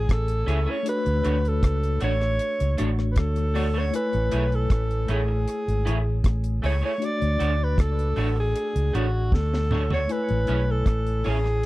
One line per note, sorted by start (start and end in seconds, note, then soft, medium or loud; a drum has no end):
0.00 0.80 A3 medium
0.00 0.81 E4 medium
0.00 0.14 G#4 loud
0.00 0.83 C#5 medium
0.00 0.82 G#5 medium
0.09 0.45 A1 medium
0.09 0.72 A4 medium
0.09 kick medium
0.09 cross-stick loud
0.09 closed hi-hat medium
0.28 closed hi-hat medium
0.46 0.66 C#2 medium
0.46 0.58 C#4 medium
0.46 0.58 E4 medium
0.46 0.58 G#4 medium
0.46 0.58 C#5 medium
0.46 closed hi-hat medium
0.66 0.75 C#4 soft
0.66 0.75 E4 soft
0.66 0.75 G#4 medium
0.66 0.75 C#5 medium
0.70 0.88 C#5 medium
0.83 2.73 A3 medium
0.83 2.74 D4 medium
0.83 closed hi-hat loud
0.87 2.75 F#4 medium
0.87 1.50 B4 loud
0.87 2.76 C#5 medium
1.06 1.23 D2 medium
1.06 closed hi-hat soft
1.24 1.60 D2 medium
1.24 1.35 A3 medium
1.24 1.35 D4 medium
1.24 1.36 F#4 medium
1.24 1.36 C#5 medium
1.24 closed hi-hat medium
1.45 2.03 A4 medium
1.45 closed hi-hat soft
1.63 1.99 C#2 medium
1.63 kick loud
1.63 cross-stick medium
1.63 closed hi-hat medium
1.83 closed hi-hat medium
2.00 2.37 A1 medium
2.00 2.12 A3 medium
2.00 2.12 D4 medium
2.00 2.12 F#4 medium
2.00 2.12 C#5 medium
2.00 2.87 C#5 loud
2.00 closed hi-hat medium
2.20 muted clean electric guitar stroke soft
2.20 cross-stick medium
2.20 closed hi-hat soft
2.39 closed hi-hat medium
2.60 2.78 C#2 medium
2.60 closed hi-hat medium
2.77 3.15 A1 medium
2.77 2.89 A3 medium
2.77 3.89 A3 soft
2.77 2.89 D4 medium
2.77 3.94 D4 soft
2.77 2.89 F#4 medium
2.77 3.94 F#4 soft
2.77 2.89 C#5 medium
2.77 3.95 C#5 soft
2.77 closed hi-hat medium
2.99 cross-stick medium
3.12 3.21 B4 medium
3.16 3.90 D2 loud
3.16 3.80 A4 medium
3.16 kick loud
3.16 cross-stick loud
3.16 closed hi-hat medium
3.36 closed hi-hat medium
3.54 3.65 A3 medium
3.54 3.66 D4 medium
3.54 3.66 F#4 medium
3.54 3.66 C#5 medium
3.54 open hi-hat medium
3.74 3.83 A3 medium
3.74 3.83 D4 soft
3.74 3.83 F#4 medium
3.74 3.82 C#5 medium
3.78 3.95 C#5 medium
3.91 6.96 A3 medium
3.91 6.97 E4 medium
3.91 6.98 G#5 soft
3.91 closed hi-hat medium
3.96 4.57 B4 loud
3.96 6.99 C#5 medium
4.13 4.31 A1 medium
4.13 closed hi-hat soft
4.31 4.68 B1 medium
4.31 4.43 A3 medium
4.31 4.43 E4 medium
4.31 4.43 G#4 medium
4.31 4.43 C#5 medium
4.31 closed hi-hat medium
4.52 5.13 A4 medium
4.52 closed hi-hat soft
4.70 5.06 A1 medium
4.70 kick loud
4.70 cross-stick loud
4.70 closed hi-hat medium
4.91 closed hi-hat medium
5.08 5.44 A1 medium
5.08 5.19 A3 medium
5.08 5.20 E4 medium
5.08 5.20 G#4 medium
5.08 6.26 G#4 medium
5.08 5.20 C#5 medium
5.08 closed hi-hat medium
5.28 muted clean electric guitar stroke medium
5.48 closed hi-hat medium
5.68 5.85 G#1 medium
5.68 closed hi-hat soft
5.85 6.22 A1 medium
5.85 5.96 A3 medium
5.85 5.97 E4 medium
5.85 5.97 G#4 medium
5.85 5.97 C#5 medium
5.85 closed hi-hat medium
6.24 6.60 A1 medium
6.24 kick loud
6.24 cross-stick medium
6.24 closed hi-hat medium
6.44 closed hi-hat medium
6.62 6.81 C#2 medium
6.62 6.73 A3 medium
6.62 6.74 E4 medium
6.62 6.74 G#4 medium
6.62 6.74 C#5 medium
6.62 6.83 C#5 medium
6.62 open hi-hat medium
6.82 6.91 A3 medium
6.82 6.91 E4 medium
6.82 6.91 G#4 medium
6.82 6.90 C#5 medium
6.82 7.06 C#5 loud
6.98 10.04 A3 medium
6.98 10.04 D4 medium
6.98 10.05 F#4 medium
6.98 closed hi-hat medium
7.03 10.06 D5 medium
7.03 7.65 D5 loud
7.22 7.39 D2 medium
7.22 closed hi-hat soft
7.39 7.76 D2 medium
7.39 7.50 A3 medium
7.39 7.51 D4 medium
7.39 7.51 F#4 medium
7.39 7.51 C#5 medium
7.39 closed hi-hat medium
7.64 7.82 B4 medium
7.78 8.14 C#2 medium
7.78 8.37 A4 medium
7.78 kick loud
7.78 cross-stick medium
7.78 closed hi-hat medium
7.99 closed hi-hat medium
8.16 8.52 A1 medium
8.16 8.27 A3 medium
8.16 8.28 D4 medium
8.16 8.28 F#4 medium
8.16 8.28 C#5 medium
8.16 open hi-hat soft
8.36 8.97 G#4 medium
8.36 muted clean electric guitar stroke medium
8.56 closed hi-hat medium
8.76 8.93 C#2 medium
8.76 closed hi-hat medium
8.93 9.30 A1 medium
8.93 9.04 A3 medium
8.93 9.05 D4 medium
8.93 9.05 F#4 medium
8.93 9.36 F#4 medium
8.93 9.05 C#5 medium
8.93 closed hi-hat medium
9.32 10.05 D2 loud
9.32 9.92 A4 medium
9.32 kick loud
9.32 snare soft
9.54 snare medium
9.71 9.82 A3 medium
9.71 9.82 D4 medium
9.71 9.82 F#4 medium
9.71 9.82 C#5 medium
9.71 mid tom medium
9.90 9.99 A3 soft
9.90 9.99 D4 medium
9.90 9.99 F#4 medium
9.90 9.99 C#5 medium
9.90 10.13 C#5 medium
9.90 floor tom medium
10.07 11.66 A3 medium
10.07 11.66 E4 medium
10.07 11.66 G#5 medium
10.07 closed hi-hat medium
10.12 10.73 B4 loud
10.12 11.66 C#5 medium
10.29 10.47 A1 medium
10.29 closed hi-hat soft
10.47 10.84 B1 medium
10.47 10.59 C#4 medium
10.47 10.59 E4 medium
10.47 10.59 G#4 medium
10.47 10.59 C#5 medium
10.47 closed hi-hat medium
10.71 11.30 A4 medium
10.86 11.22 A1 medium
10.86 kick loud
10.86 cross-stick loud
10.86 closed hi-hat medium
11.07 closed hi-hat soft
11.24 11.61 A1 medium
11.24 11.35 C#4 medium
11.24 11.36 E4 medium
11.24 11.36 G#4 medium
11.24 11.36 C#5 medium
11.24 open hi-hat soft
11.29 11.66 G#4 loud
11.44 muted clean electric guitar stroke soft
11.44 cross-stick medium